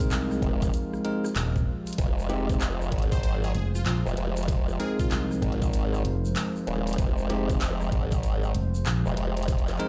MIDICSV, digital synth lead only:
0, 0, Header, 1, 2, 480
1, 0, Start_track
1, 0, Key_signature, -4, "minor"
1, 0, Tempo, 625000
1, 1523, Time_signature, 4, 2, 24, 8
1, 7592, End_track
2, 0, Start_track
2, 0, Title_t, "Digital synth lead"
2, 0, Program_c, 0, 84
2, 2394, Note_on_c, 0, 72, 92
2, 2451, Note_off_c, 0, 72, 0
2, 2486, Note_on_c, 0, 72, 81
2, 2582, Note_off_c, 0, 72, 0
2, 2641, Note_on_c, 0, 68, 96
2, 2694, Note_off_c, 0, 68, 0
2, 2726, Note_on_c, 0, 68, 74
2, 2822, Note_off_c, 0, 68, 0
2, 2882, Note_on_c, 0, 65, 88
2, 2935, Note_off_c, 0, 65, 0
2, 2970, Note_on_c, 0, 65, 85
2, 3064, Note_off_c, 0, 65, 0
2, 3688, Note_on_c, 0, 68, 99
2, 3808, Note_off_c, 0, 68, 0
2, 3843, Note_on_c, 0, 65, 88
2, 3895, Note_off_c, 0, 65, 0
2, 3928, Note_on_c, 0, 65, 77
2, 4023, Note_off_c, 0, 65, 0
2, 7592, End_track
0, 0, End_of_file